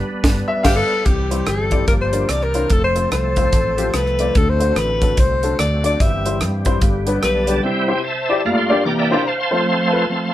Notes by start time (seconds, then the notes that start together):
Already playing: G3 B3 D4 B4
0.24 G1, kick, snare
0.48 E5
0.63 G1 G4 F5, kick, snare, crash
0.76 A4
1.05 C2 C3 E3 G3 C4 G4, kick, closed hi-hat
1.31 G3 C4 E4 C5, closed hi-hat
1.46 G1 A4, cross-stick, closed hi-hat
1.71 G3 C4 E4 D5, kick, closed hi-hat
1.88 G1 G2 F3 A#3 D4 A#4, kick, closed hi-hat
2.01 C5
2.12 G3 D4 F4 A#4, closed hi-hat
2.29 C2 C3 E3 C4 A#4 D5, cross-stick, closed hi-hat
2.42 A#4, cross-stick
2.54 A#3 D4 E4 C5, closed hi-hat
2.69 F1 F3 A3 A4, kick, closed hi-hat
2.84 C5
2.95 A3 C4 F4 C5, closed hi-hat
3.12 C2 C5, cross-stick, closed hi-hat
3.36 A3 C4 F4 C5, kick, closed hi-hat
3.53 A1, kick, closed hi-hat
3.77 A3 C4 F4 G4, closed hi-hat
3.94 C2 B4, cross-stick, closed hi-hat
4.06 cross-stick
4.19 A3 C4 F4 D5, closed hi-hat
4.35 D2 D3 F#4 A4, kick, closed hi-hat
4.49 C5
4.60 A3 D4 F#4 C5, closed hi-hat
4.76 A1 B4, cross-stick, closed hi-hat
5.01 A3 D4 F#4 A4, kick, closed hi-hat
5.17 C2 C5, kick, closed hi-hat
5.43 A3 D4 F#4 A4, closed hi-hat
5.59 D2 D5, cross-stick, closed hi-hat
5.84 A3 D4 F#4 D5, closed hi-hat
6.00 G1 G2 E3 G3 G4 E5, kick, closed hi-hat
6.26 G3 C4 E4 C5, closed hi-hat
6.41 G2, cross-stick, closed hi-hat
6.65 G3 C4 E4 C5, kick, closed hi-hat
6.81 G1 G2 D3 B3, kick, closed hi-hat
7.06 G3 B3 D4 B4, closed hi-hat
7.21 B1 B4 G5, cross-stick, closed hi-hat
7.34 D5 A5
7.47 G3 B3 D4 G4, closed hi-hat
7.63 C3 G3 C4 E4 C5 E5 G5
7.88 E4 G4 C5
7.97 G#5
8.04 C5 E5 A5
8.29 E4 G4 D5
8.45 G2 A3 A#3 F4 D5 F5 A#5
8.57 F5 C6
8.69 A#3 D4 F4 G4 D5
8.85 C3 E3 A#3 D4 G5 A#5 D6
8.99 D5 E5 A#5
9.11 A#3 D4 E4 G4 C5
9.27 C5 F5 A5
9.40 F5 A5 C6
9.51 F3 A3 C4 F4 A4 C5
9.68 F5 A5 C6
9.92 F4 A4 B4
10.09 F3 A3 C4